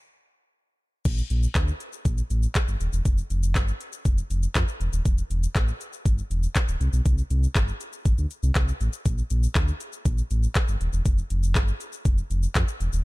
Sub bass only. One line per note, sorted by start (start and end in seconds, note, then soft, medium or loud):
1.05 1.22 A#1 loud
1.30 1.47 A#1 loud
1.55 1.72 D2 loud
2.05 2.22 A#1 loud
2.30 2.47 A1 medium
2.68 2.76 G1 medium
2.80 2.89 D#1 loud
2.93 3.01 E1 medium
3.05 3.22 F1 loud
3.30 3.57 F1 loud
3.55 3.72 G1 loud
4.05 4.22 F1 loud
4.30 4.47 F1 medium
4.56 4.64 F2 loud
4.80 4.89 E1 loud
4.93 5.01 D#1 medium
5.05 5.22 E1 loud
5.30 5.47 E1 loud
5.56 5.72 A1 medium
6.05 6.22 G1 loud
6.30 6.47 E1 medium
6.68 6.76 D1 medium
6.80 6.89 C2 loud
6.93 7.01 B1 medium
7.06 7.22 C2 loud
7.30 7.47 C2 loud
7.55 7.72 G1 loud
8.05 8.14 G1 loud
8.18 8.26 D2 medium
8.43 8.51 C2 medium
8.56 8.72 C2 loud
8.81 8.89 A1 loud
9.06 9.22 A#1 loud
9.31 9.47 A#1 loud
9.55 9.72 D2 loud
10.05 10.22 A#1 loud
10.31 10.47 A1 medium
10.68 10.76 G1 medium
10.81 10.89 D#1 medium
10.93 11.01 E1 medium
11.06 11.22 F1 loud
11.30 11.57 F1 loud
11.55 11.72 G1 loud
12.05 12.22 F1 loud
12.30 12.47 F1 medium
12.56 12.64 F2 loud
12.80 12.89 E1 medium
12.93 13.01 D#1 medium